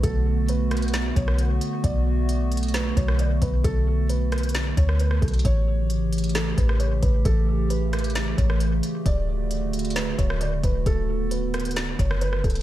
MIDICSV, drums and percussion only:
0, 0, Header, 1, 2, 480
1, 0, Start_track
1, 0, Key_signature, 2, "minor"
1, 0, Tempo, 451128
1, 37, Time_signature, 4, 2, 24, 8
1, 13432, End_track
2, 0, Start_track
2, 0, Title_t, "Drums"
2, 37, Note_on_c, 9, 36, 119
2, 37, Note_on_c, 9, 42, 87
2, 144, Note_off_c, 9, 36, 0
2, 144, Note_off_c, 9, 42, 0
2, 516, Note_on_c, 9, 42, 68
2, 623, Note_off_c, 9, 42, 0
2, 757, Note_on_c, 9, 42, 54
2, 759, Note_on_c, 9, 37, 98
2, 816, Note_off_c, 9, 42, 0
2, 816, Note_on_c, 9, 42, 56
2, 866, Note_off_c, 9, 37, 0
2, 876, Note_off_c, 9, 42, 0
2, 876, Note_on_c, 9, 42, 52
2, 936, Note_off_c, 9, 42, 0
2, 936, Note_on_c, 9, 42, 51
2, 995, Note_off_c, 9, 42, 0
2, 995, Note_on_c, 9, 42, 77
2, 998, Note_on_c, 9, 38, 110
2, 1102, Note_off_c, 9, 42, 0
2, 1105, Note_off_c, 9, 38, 0
2, 1237, Note_on_c, 9, 36, 99
2, 1238, Note_on_c, 9, 42, 75
2, 1343, Note_off_c, 9, 36, 0
2, 1345, Note_off_c, 9, 42, 0
2, 1360, Note_on_c, 9, 37, 100
2, 1467, Note_off_c, 9, 37, 0
2, 1474, Note_on_c, 9, 42, 66
2, 1580, Note_off_c, 9, 42, 0
2, 1716, Note_on_c, 9, 42, 77
2, 1822, Note_off_c, 9, 42, 0
2, 1956, Note_on_c, 9, 36, 114
2, 1957, Note_on_c, 9, 42, 86
2, 2063, Note_off_c, 9, 36, 0
2, 2063, Note_off_c, 9, 42, 0
2, 2436, Note_on_c, 9, 42, 64
2, 2542, Note_off_c, 9, 42, 0
2, 2677, Note_on_c, 9, 42, 55
2, 2737, Note_off_c, 9, 42, 0
2, 2737, Note_on_c, 9, 42, 55
2, 2797, Note_off_c, 9, 42, 0
2, 2797, Note_on_c, 9, 42, 54
2, 2856, Note_off_c, 9, 42, 0
2, 2856, Note_on_c, 9, 42, 49
2, 2916, Note_off_c, 9, 42, 0
2, 2916, Note_on_c, 9, 42, 75
2, 2918, Note_on_c, 9, 38, 106
2, 3022, Note_off_c, 9, 42, 0
2, 3025, Note_off_c, 9, 38, 0
2, 3157, Note_on_c, 9, 36, 92
2, 3160, Note_on_c, 9, 42, 76
2, 3264, Note_off_c, 9, 36, 0
2, 3266, Note_off_c, 9, 42, 0
2, 3281, Note_on_c, 9, 37, 104
2, 3388, Note_off_c, 9, 37, 0
2, 3394, Note_on_c, 9, 42, 65
2, 3501, Note_off_c, 9, 42, 0
2, 3636, Note_on_c, 9, 36, 94
2, 3636, Note_on_c, 9, 42, 78
2, 3742, Note_off_c, 9, 42, 0
2, 3743, Note_off_c, 9, 36, 0
2, 3877, Note_on_c, 9, 36, 115
2, 3878, Note_on_c, 9, 42, 89
2, 3983, Note_off_c, 9, 36, 0
2, 3984, Note_off_c, 9, 42, 0
2, 4357, Note_on_c, 9, 42, 65
2, 4463, Note_off_c, 9, 42, 0
2, 4597, Note_on_c, 9, 42, 41
2, 4597, Note_on_c, 9, 46, 50
2, 4600, Note_on_c, 9, 37, 101
2, 4658, Note_off_c, 9, 42, 0
2, 4658, Note_on_c, 9, 42, 48
2, 4703, Note_off_c, 9, 46, 0
2, 4706, Note_off_c, 9, 37, 0
2, 4717, Note_off_c, 9, 42, 0
2, 4717, Note_on_c, 9, 42, 54
2, 4778, Note_off_c, 9, 42, 0
2, 4778, Note_on_c, 9, 42, 65
2, 4836, Note_off_c, 9, 42, 0
2, 4836, Note_on_c, 9, 42, 74
2, 4839, Note_on_c, 9, 38, 112
2, 4943, Note_off_c, 9, 42, 0
2, 4945, Note_off_c, 9, 38, 0
2, 5077, Note_on_c, 9, 36, 93
2, 5079, Note_on_c, 9, 42, 74
2, 5184, Note_off_c, 9, 36, 0
2, 5186, Note_off_c, 9, 42, 0
2, 5201, Note_on_c, 9, 37, 102
2, 5308, Note_off_c, 9, 37, 0
2, 5315, Note_on_c, 9, 42, 63
2, 5421, Note_off_c, 9, 42, 0
2, 5436, Note_on_c, 9, 37, 94
2, 5542, Note_off_c, 9, 37, 0
2, 5556, Note_on_c, 9, 36, 95
2, 5557, Note_on_c, 9, 42, 47
2, 5617, Note_off_c, 9, 42, 0
2, 5617, Note_on_c, 9, 42, 58
2, 5663, Note_off_c, 9, 36, 0
2, 5677, Note_off_c, 9, 42, 0
2, 5677, Note_on_c, 9, 42, 63
2, 5738, Note_off_c, 9, 42, 0
2, 5738, Note_on_c, 9, 42, 77
2, 5797, Note_on_c, 9, 36, 118
2, 5798, Note_off_c, 9, 42, 0
2, 5798, Note_on_c, 9, 42, 86
2, 5904, Note_off_c, 9, 36, 0
2, 5905, Note_off_c, 9, 42, 0
2, 6276, Note_on_c, 9, 42, 66
2, 6383, Note_off_c, 9, 42, 0
2, 6517, Note_on_c, 9, 42, 57
2, 6577, Note_off_c, 9, 42, 0
2, 6577, Note_on_c, 9, 42, 55
2, 6637, Note_off_c, 9, 42, 0
2, 6637, Note_on_c, 9, 42, 49
2, 6696, Note_off_c, 9, 42, 0
2, 6696, Note_on_c, 9, 42, 51
2, 6755, Note_off_c, 9, 42, 0
2, 6755, Note_on_c, 9, 42, 72
2, 6758, Note_on_c, 9, 38, 113
2, 6861, Note_off_c, 9, 42, 0
2, 6864, Note_off_c, 9, 38, 0
2, 6997, Note_on_c, 9, 36, 98
2, 6998, Note_on_c, 9, 42, 75
2, 7103, Note_off_c, 9, 36, 0
2, 7105, Note_off_c, 9, 42, 0
2, 7120, Note_on_c, 9, 37, 101
2, 7226, Note_off_c, 9, 37, 0
2, 7234, Note_on_c, 9, 42, 66
2, 7340, Note_off_c, 9, 42, 0
2, 7476, Note_on_c, 9, 36, 98
2, 7476, Note_on_c, 9, 42, 75
2, 7582, Note_off_c, 9, 36, 0
2, 7582, Note_off_c, 9, 42, 0
2, 7717, Note_on_c, 9, 36, 122
2, 7717, Note_on_c, 9, 42, 86
2, 7823, Note_off_c, 9, 36, 0
2, 7823, Note_off_c, 9, 42, 0
2, 8196, Note_on_c, 9, 42, 66
2, 8302, Note_off_c, 9, 42, 0
2, 8437, Note_on_c, 9, 42, 55
2, 8440, Note_on_c, 9, 37, 98
2, 8497, Note_off_c, 9, 42, 0
2, 8497, Note_on_c, 9, 42, 54
2, 8546, Note_off_c, 9, 37, 0
2, 8556, Note_off_c, 9, 42, 0
2, 8556, Note_on_c, 9, 42, 54
2, 8617, Note_off_c, 9, 42, 0
2, 8617, Note_on_c, 9, 42, 50
2, 8675, Note_off_c, 9, 42, 0
2, 8675, Note_on_c, 9, 42, 75
2, 8678, Note_on_c, 9, 38, 108
2, 8782, Note_off_c, 9, 42, 0
2, 8784, Note_off_c, 9, 38, 0
2, 8917, Note_on_c, 9, 36, 90
2, 8919, Note_on_c, 9, 42, 73
2, 9023, Note_off_c, 9, 36, 0
2, 9025, Note_off_c, 9, 42, 0
2, 9041, Note_on_c, 9, 37, 98
2, 9148, Note_off_c, 9, 37, 0
2, 9155, Note_on_c, 9, 42, 69
2, 9261, Note_off_c, 9, 42, 0
2, 9397, Note_on_c, 9, 42, 75
2, 9503, Note_off_c, 9, 42, 0
2, 9636, Note_on_c, 9, 36, 123
2, 9637, Note_on_c, 9, 42, 88
2, 9743, Note_off_c, 9, 36, 0
2, 9743, Note_off_c, 9, 42, 0
2, 10116, Note_on_c, 9, 42, 68
2, 10222, Note_off_c, 9, 42, 0
2, 10357, Note_on_c, 9, 42, 58
2, 10417, Note_off_c, 9, 42, 0
2, 10417, Note_on_c, 9, 42, 56
2, 10477, Note_off_c, 9, 42, 0
2, 10477, Note_on_c, 9, 42, 51
2, 10537, Note_off_c, 9, 42, 0
2, 10537, Note_on_c, 9, 42, 50
2, 10596, Note_off_c, 9, 42, 0
2, 10596, Note_on_c, 9, 42, 76
2, 10598, Note_on_c, 9, 38, 111
2, 10702, Note_off_c, 9, 42, 0
2, 10705, Note_off_c, 9, 38, 0
2, 10837, Note_on_c, 9, 36, 94
2, 10839, Note_on_c, 9, 42, 75
2, 10944, Note_off_c, 9, 36, 0
2, 10945, Note_off_c, 9, 42, 0
2, 10961, Note_on_c, 9, 37, 99
2, 11067, Note_off_c, 9, 37, 0
2, 11074, Note_on_c, 9, 42, 64
2, 11181, Note_off_c, 9, 42, 0
2, 11316, Note_on_c, 9, 36, 100
2, 11316, Note_on_c, 9, 42, 76
2, 11422, Note_off_c, 9, 42, 0
2, 11423, Note_off_c, 9, 36, 0
2, 11557, Note_on_c, 9, 36, 119
2, 11557, Note_on_c, 9, 42, 88
2, 11663, Note_off_c, 9, 36, 0
2, 11664, Note_off_c, 9, 42, 0
2, 12036, Note_on_c, 9, 42, 67
2, 12143, Note_off_c, 9, 42, 0
2, 12277, Note_on_c, 9, 42, 41
2, 12277, Note_on_c, 9, 46, 52
2, 12280, Note_on_c, 9, 37, 103
2, 12338, Note_off_c, 9, 42, 0
2, 12338, Note_on_c, 9, 42, 50
2, 12383, Note_off_c, 9, 46, 0
2, 12386, Note_off_c, 9, 37, 0
2, 12398, Note_off_c, 9, 42, 0
2, 12398, Note_on_c, 9, 42, 54
2, 12458, Note_off_c, 9, 42, 0
2, 12458, Note_on_c, 9, 42, 61
2, 12516, Note_off_c, 9, 42, 0
2, 12516, Note_on_c, 9, 42, 76
2, 12519, Note_on_c, 9, 38, 110
2, 12623, Note_off_c, 9, 42, 0
2, 12626, Note_off_c, 9, 38, 0
2, 12758, Note_on_c, 9, 36, 91
2, 12760, Note_on_c, 9, 42, 75
2, 12864, Note_off_c, 9, 36, 0
2, 12867, Note_off_c, 9, 42, 0
2, 12882, Note_on_c, 9, 37, 100
2, 12989, Note_off_c, 9, 37, 0
2, 12995, Note_on_c, 9, 42, 64
2, 13102, Note_off_c, 9, 42, 0
2, 13117, Note_on_c, 9, 37, 94
2, 13223, Note_off_c, 9, 37, 0
2, 13237, Note_on_c, 9, 36, 97
2, 13238, Note_on_c, 9, 42, 47
2, 13298, Note_off_c, 9, 42, 0
2, 13298, Note_on_c, 9, 42, 57
2, 13343, Note_off_c, 9, 36, 0
2, 13358, Note_off_c, 9, 42, 0
2, 13358, Note_on_c, 9, 42, 67
2, 13432, Note_off_c, 9, 42, 0
2, 13432, End_track
0, 0, End_of_file